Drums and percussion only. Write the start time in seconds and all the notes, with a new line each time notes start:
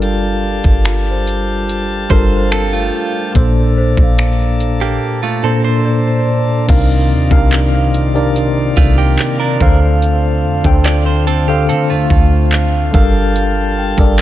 0.02 closed hi-hat
0.64 kick
0.85 finger snap, closed hi-hat
1.27 closed hi-hat
1.69 closed hi-hat
2.10 kick
2.52 finger snap, closed hi-hat
3.35 kick, closed hi-hat
3.97 kick
4.18 finger snap, closed hi-hat
4.60 closed hi-hat
6.69 kick, closed hi-hat, crash
7.31 kick
7.52 clap, closed hi-hat
7.94 closed hi-hat
8.36 closed hi-hat
8.77 kick
9.19 clap, closed hi-hat
9.61 kick
10.02 closed hi-hat
10.64 kick
10.85 clap, closed hi-hat
11.28 closed hi-hat
11.69 closed hi-hat
12.10 kick
12.52 clap, closed hi-hat
12.94 kick
13.36 closed hi-hat
13.98 kick